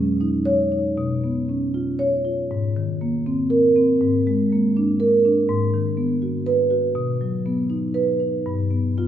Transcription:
0, 0, Header, 1, 2, 480
1, 0, Start_track
1, 0, Tempo, 509338
1, 926, Time_signature, 6, 3, 24, 8
1, 2838, Tempo, 493421
1, 7158, Tempo, 512821
1, 8681, End_track
2, 0, Start_track
2, 0, Title_t, "Marimba"
2, 0, Program_c, 0, 12
2, 0, Note_on_c, 0, 47, 70
2, 0, Note_on_c, 0, 54, 55
2, 0, Note_on_c, 0, 61, 60
2, 101, Note_off_c, 0, 54, 0
2, 195, Note_on_c, 0, 63, 64
2, 345, Note_off_c, 0, 61, 0
2, 429, Note_on_c, 0, 73, 86
2, 586, Note_off_c, 0, 63, 0
2, 678, Note_on_c, 0, 63, 64
2, 823, Note_off_c, 0, 73, 0
2, 895, Note_off_c, 0, 47, 0
2, 919, Note_on_c, 0, 47, 74
2, 922, Note_off_c, 0, 63, 0
2, 1166, Note_on_c, 0, 59, 53
2, 1405, Note_on_c, 0, 61, 58
2, 1546, Note_off_c, 0, 59, 0
2, 1641, Note_on_c, 0, 65, 59
2, 1786, Note_off_c, 0, 61, 0
2, 1875, Note_on_c, 0, 73, 85
2, 2024, Note_off_c, 0, 65, 0
2, 2119, Note_on_c, 0, 65, 58
2, 2262, Note_off_c, 0, 73, 0
2, 2318, Note_off_c, 0, 47, 0
2, 2359, Note_off_c, 0, 65, 0
2, 2365, Note_on_c, 0, 44, 79
2, 2606, Note_on_c, 0, 51, 62
2, 2839, Note_on_c, 0, 58, 64
2, 2989, Note_off_c, 0, 51, 0
2, 3083, Note_on_c, 0, 60, 67
2, 3226, Note_off_c, 0, 58, 0
2, 3315, Note_on_c, 0, 70, 83
2, 3465, Note_off_c, 0, 60, 0
2, 3565, Note_on_c, 0, 60, 68
2, 3701, Note_off_c, 0, 70, 0
2, 3765, Note_off_c, 0, 44, 0
2, 3803, Note_off_c, 0, 60, 0
2, 3807, Note_on_c, 0, 44, 77
2, 4063, Note_on_c, 0, 56, 57
2, 4311, Note_on_c, 0, 58, 61
2, 4440, Note_off_c, 0, 56, 0
2, 4545, Note_on_c, 0, 62, 63
2, 4681, Note_off_c, 0, 58, 0
2, 4770, Note_on_c, 0, 70, 84
2, 4919, Note_off_c, 0, 62, 0
2, 5019, Note_on_c, 0, 62, 60
2, 5153, Note_off_c, 0, 70, 0
2, 5211, Note_off_c, 0, 44, 0
2, 5248, Note_on_c, 0, 44, 83
2, 5254, Note_off_c, 0, 62, 0
2, 5490, Note_on_c, 0, 51, 59
2, 5718, Note_on_c, 0, 59, 61
2, 5862, Note_off_c, 0, 51, 0
2, 5960, Note_on_c, 0, 66, 58
2, 6094, Note_off_c, 0, 59, 0
2, 6197, Note_on_c, 0, 71, 88
2, 6339, Note_off_c, 0, 66, 0
2, 6433, Note_on_c, 0, 66, 58
2, 6582, Note_off_c, 0, 71, 0
2, 6638, Note_off_c, 0, 44, 0
2, 6671, Note_on_c, 0, 47, 73
2, 6676, Note_off_c, 0, 66, 0
2, 6923, Note_on_c, 0, 54, 54
2, 7163, Note_on_c, 0, 59, 61
2, 7302, Note_off_c, 0, 54, 0
2, 7388, Note_on_c, 0, 63, 59
2, 7538, Note_off_c, 0, 59, 0
2, 7617, Note_on_c, 0, 71, 79
2, 7771, Note_off_c, 0, 63, 0
2, 7856, Note_on_c, 0, 63, 54
2, 8008, Note_off_c, 0, 71, 0
2, 8071, Note_off_c, 0, 47, 0
2, 8101, Note_on_c, 0, 43, 70
2, 8104, Note_off_c, 0, 63, 0
2, 8332, Note_on_c, 0, 59, 47
2, 8570, Note_off_c, 0, 59, 0
2, 8581, Note_on_c, 0, 59, 50
2, 8586, Note_on_c, 0, 65, 74
2, 8681, Note_off_c, 0, 43, 0
2, 8681, Note_off_c, 0, 59, 0
2, 8681, Note_off_c, 0, 65, 0
2, 8681, End_track
0, 0, End_of_file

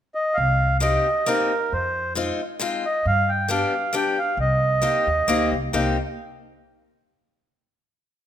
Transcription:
0, 0, Header, 1, 4, 480
1, 0, Start_track
1, 0, Key_signature, -3, "minor"
1, 0, Tempo, 445434
1, 394, Time_signature, 3, 2, 24, 8
1, 4709, Tempo, 452148
1, 8840, End_track
2, 0, Start_track
2, 0, Title_t, "Accordion"
2, 0, Program_c, 0, 21
2, 159, Note_on_c, 0, 75, 75
2, 367, Note_on_c, 0, 77, 92
2, 397, Note_off_c, 0, 75, 0
2, 833, Note_off_c, 0, 77, 0
2, 885, Note_on_c, 0, 75, 77
2, 1369, Note_on_c, 0, 70, 77
2, 1382, Note_off_c, 0, 75, 0
2, 1862, Note_off_c, 0, 70, 0
2, 1863, Note_on_c, 0, 72, 76
2, 2301, Note_off_c, 0, 72, 0
2, 3075, Note_on_c, 0, 75, 74
2, 3294, Note_off_c, 0, 75, 0
2, 3312, Note_on_c, 0, 77, 92
2, 3544, Note_on_c, 0, 79, 75
2, 3560, Note_off_c, 0, 77, 0
2, 3765, Note_off_c, 0, 79, 0
2, 3777, Note_on_c, 0, 77, 71
2, 4255, Note_off_c, 0, 77, 0
2, 4271, Note_on_c, 0, 79, 71
2, 4507, Note_on_c, 0, 77, 79
2, 4515, Note_off_c, 0, 79, 0
2, 4724, Note_off_c, 0, 77, 0
2, 4748, Note_on_c, 0, 75, 83
2, 5909, Note_off_c, 0, 75, 0
2, 6161, Note_on_c, 0, 79, 62
2, 6400, Note_off_c, 0, 79, 0
2, 8840, End_track
3, 0, Start_track
3, 0, Title_t, "Steel-string acoustic guitar"
3, 0, Program_c, 1, 25
3, 866, Note_on_c, 1, 58, 47
3, 872, Note_on_c, 1, 60, 54
3, 884, Note_on_c, 1, 63, 45
3, 891, Note_on_c, 1, 67, 62
3, 1135, Note_off_c, 1, 58, 0
3, 1138, Note_off_c, 1, 60, 0
3, 1144, Note_off_c, 1, 63, 0
3, 1148, Note_off_c, 1, 67, 0
3, 1361, Note_on_c, 1, 58, 60
3, 1368, Note_on_c, 1, 60, 42
3, 1378, Note_on_c, 1, 63, 48
3, 1387, Note_on_c, 1, 67, 51
3, 1624, Note_off_c, 1, 58, 0
3, 1625, Note_off_c, 1, 60, 0
3, 1633, Note_off_c, 1, 63, 0
3, 1634, Note_off_c, 1, 67, 0
3, 2321, Note_on_c, 1, 56, 50
3, 2326, Note_on_c, 1, 60, 42
3, 2338, Note_on_c, 1, 65, 57
3, 2339, Note_on_c, 1, 63, 45
3, 2582, Note_off_c, 1, 56, 0
3, 2586, Note_off_c, 1, 60, 0
3, 2587, Note_off_c, 1, 63, 0
3, 2590, Note_off_c, 1, 65, 0
3, 2796, Note_on_c, 1, 56, 60
3, 2806, Note_on_c, 1, 63, 61
3, 2807, Note_on_c, 1, 60, 44
3, 2817, Note_on_c, 1, 65, 68
3, 3058, Note_off_c, 1, 56, 0
3, 3060, Note_off_c, 1, 60, 0
3, 3062, Note_off_c, 1, 63, 0
3, 3067, Note_off_c, 1, 65, 0
3, 3755, Note_on_c, 1, 55, 52
3, 3762, Note_on_c, 1, 59, 55
3, 3769, Note_on_c, 1, 62, 49
3, 3778, Note_on_c, 1, 67, 54
3, 4011, Note_off_c, 1, 55, 0
3, 4015, Note_off_c, 1, 59, 0
3, 4019, Note_off_c, 1, 62, 0
3, 4021, Note_off_c, 1, 67, 0
3, 4231, Note_on_c, 1, 55, 50
3, 4242, Note_on_c, 1, 62, 48
3, 4243, Note_on_c, 1, 59, 43
3, 4250, Note_on_c, 1, 67, 55
3, 4488, Note_off_c, 1, 55, 0
3, 4491, Note_off_c, 1, 59, 0
3, 4493, Note_off_c, 1, 62, 0
3, 4497, Note_off_c, 1, 67, 0
3, 5183, Note_on_c, 1, 58, 51
3, 5189, Note_on_c, 1, 60, 40
3, 5194, Note_on_c, 1, 63, 51
3, 5200, Note_on_c, 1, 67, 55
3, 5446, Note_off_c, 1, 58, 0
3, 5446, Note_off_c, 1, 60, 0
3, 5450, Note_off_c, 1, 63, 0
3, 5453, Note_off_c, 1, 67, 0
3, 5673, Note_on_c, 1, 58, 66
3, 5684, Note_on_c, 1, 60, 53
3, 5687, Note_on_c, 1, 63, 45
3, 5692, Note_on_c, 1, 67, 62
3, 5934, Note_off_c, 1, 58, 0
3, 5939, Note_off_c, 1, 60, 0
3, 5939, Note_off_c, 1, 63, 0
3, 5943, Note_off_c, 1, 67, 0
3, 6155, Note_on_c, 1, 58, 52
3, 6164, Note_on_c, 1, 60, 42
3, 6164, Note_on_c, 1, 67, 64
3, 6167, Note_on_c, 1, 63, 47
3, 6399, Note_off_c, 1, 58, 0
3, 6399, Note_off_c, 1, 63, 0
3, 6400, Note_off_c, 1, 60, 0
3, 6402, Note_off_c, 1, 67, 0
3, 8840, End_track
4, 0, Start_track
4, 0, Title_t, "Upright bass"
4, 0, Program_c, 2, 32
4, 406, Note_on_c, 2, 36, 83
4, 1033, Note_off_c, 2, 36, 0
4, 1857, Note_on_c, 2, 41, 75
4, 2476, Note_off_c, 2, 41, 0
4, 3293, Note_on_c, 2, 43, 82
4, 3906, Note_off_c, 2, 43, 0
4, 4712, Note_on_c, 2, 36, 81
4, 5190, Note_off_c, 2, 36, 0
4, 5450, Note_on_c, 2, 39, 61
4, 5649, Note_off_c, 2, 39, 0
4, 5672, Note_on_c, 2, 38, 57
4, 5907, Note_off_c, 2, 38, 0
4, 5934, Note_on_c, 2, 36, 64
4, 6134, Note_off_c, 2, 36, 0
4, 6158, Note_on_c, 2, 36, 63
4, 6399, Note_off_c, 2, 36, 0
4, 8840, End_track
0, 0, End_of_file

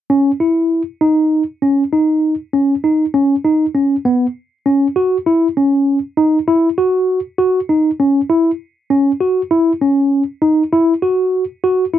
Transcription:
0, 0, Header, 1, 2, 480
1, 0, Start_track
1, 0, Tempo, 606673
1, 81, Time_signature, 7, 3, 24, 8
1, 9485, End_track
2, 0, Start_track
2, 0, Title_t, "Tine electric piano"
2, 0, Program_c, 0, 4
2, 79, Note_on_c, 0, 61, 67
2, 242, Note_off_c, 0, 61, 0
2, 318, Note_on_c, 0, 64, 58
2, 645, Note_off_c, 0, 64, 0
2, 800, Note_on_c, 0, 63, 64
2, 1126, Note_off_c, 0, 63, 0
2, 1283, Note_on_c, 0, 61, 55
2, 1446, Note_off_c, 0, 61, 0
2, 1524, Note_on_c, 0, 63, 57
2, 1849, Note_off_c, 0, 63, 0
2, 2006, Note_on_c, 0, 61, 57
2, 2168, Note_off_c, 0, 61, 0
2, 2247, Note_on_c, 0, 63, 55
2, 2409, Note_off_c, 0, 63, 0
2, 2486, Note_on_c, 0, 61, 64
2, 2648, Note_off_c, 0, 61, 0
2, 2725, Note_on_c, 0, 63, 61
2, 2888, Note_off_c, 0, 63, 0
2, 2964, Note_on_c, 0, 61, 53
2, 3127, Note_off_c, 0, 61, 0
2, 3206, Note_on_c, 0, 59, 64
2, 3368, Note_off_c, 0, 59, 0
2, 3686, Note_on_c, 0, 61, 63
2, 3849, Note_off_c, 0, 61, 0
2, 3924, Note_on_c, 0, 66, 65
2, 4088, Note_off_c, 0, 66, 0
2, 4165, Note_on_c, 0, 64, 69
2, 4328, Note_off_c, 0, 64, 0
2, 4407, Note_on_c, 0, 61, 57
2, 4732, Note_off_c, 0, 61, 0
2, 4884, Note_on_c, 0, 63, 66
2, 5047, Note_off_c, 0, 63, 0
2, 5125, Note_on_c, 0, 64, 75
2, 5288, Note_off_c, 0, 64, 0
2, 5363, Note_on_c, 0, 66, 66
2, 5689, Note_off_c, 0, 66, 0
2, 5843, Note_on_c, 0, 66, 71
2, 6007, Note_off_c, 0, 66, 0
2, 6085, Note_on_c, 0, 63, 61
2, 6248, Note_off_c, 0, 63, 0
2, 6326, Note_on_c, 0, 61, 61
2, 6489, Note_off_c, 0, 61, 0
2, 6564, Note_on_c, 0, 64, 68
2, 6727, Note_off_c, 0, 64, 0
2, 7044, Note_on_c, 0, 61, 64
2, 7207, Note_off_c, 0, 61, 0
2, 7283, Note_on_c, 0, 66, 60
2, 7446, Note_off_c, 0, 66, 0
2, 7525, Note_on_c, 0, 64, 71
2, 7687, Note_off_c, 0, 64, 0
2, 7766, Note_on_c, 0, 61, 62
2, 8090, Note_off_c, 0, 61, 0
2, 8243, Note_on_c, 0, 63, 65
2, 8405, Note_off_c, 0, 63, 0
2, 8485, Note_on_c, 0, 64, 76
2, 8647, Note_off_c, 0, 64, 0
2, 8723, Note_on_c, 0, 66, 62
2, 9048, Note_off_c, 0, 66, 0
2, 9208, Note_on_c, 0, 66, 67
2, 9368, Note_off_c, 0, 66, 0
2, 9444, Note_on_c, 0, 64, 60
2, 9485, Note_off_c, 0, 64, 0
2, 9485, End_track
0, 0, End_of_file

